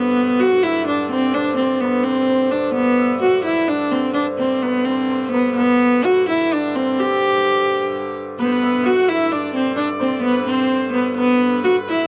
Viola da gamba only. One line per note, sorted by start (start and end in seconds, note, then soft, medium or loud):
0.00 0.41 B3 medium
0.40 0.65 F#4 medium
0.63 0.86 E4 medium
0.87 1.09 D4 medium
1.11 1.35 C4 medium
1.34 1.56 D4 medium
1.57 1.82 C4 medium
1.80 2.05 B3 medium
2.04 2.53 C4 medium
2.51 2.73 D4 medium
2.74 3.18 B3 medium
3.22 3.44 F#4 medium
3.45 3.70 E4 medium
3.68 3.93 D4 medium
3.92 4.13 C4 medium
4.13 4.25 D4 medium
4.38 4.64 C4 medium
4.62 4.87 B3 medium
4.85 5.31 C4 medium
5.32 5.54 B3 medium
5.56 6.06 B3 loud
6.05 6.28 F#4 medium
6.29 6.54 E4 medium
6.53 6.77 D4 medium
6.75 7.01 C4 medium
7.00 8.16 G4 medium
8.39 8.87 B3 medium
8.85 9.10 F#4 medium
9.09 9.33 E4 medium
9.32 9.54 D4 medium
9.54 9.76 C4 medium
9.76 9.88 D4 medium
10.01 10.22 C4 medium
10.23 10.46 B3 medium
10.47 10.92 C4 medium
10.93 11.16 B3 medium
11.17 11.62 B3 loud
11.64 11.76 F#4 medium
11.89 12.07 E4 medium